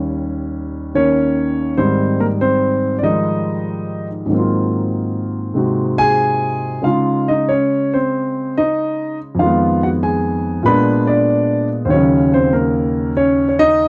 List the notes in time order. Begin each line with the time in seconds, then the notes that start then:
Already playing: D#2 D#3 G3 C#4
0.95 D#3 A#3 C#4 C#5
1.77 G#2 D#3 G3 C4 C5
2.20 A#3 A#4
2.41 C4 C5
2.99 D5
3.03 D#3 F3 G#3 D#4 D#5
4.26 G#2 D#3
4.30 F#3 A#3
4.34 C4 F4
5.54 C3 G#3 C4 D#4 F#4
5.98 G#4 G#5
6.82 C#3 G#3 D#4 F5
6.86 F4
7.28 D#4 D#5
7.49 C#4 C#5
7.94 C4 C5
8.57 D#4 D#5
9.35 F2
9.39 D#3 F4 F5
9.43 G#3 B3
9.83 F#4 F#5
10.03 G#4 G#5
10.63 A#2 G#3 B3 B4 B5
10.67 D4
11.07 D4 D5
11.85 D#2 D#3 C5
11.90 F#3 C#4 C#5
11.96 C#3
12.34 C4 C5
12.53 A#3 A#4
13.17 C#4 C#5
13.49 C#5
13.59 D#4 D#5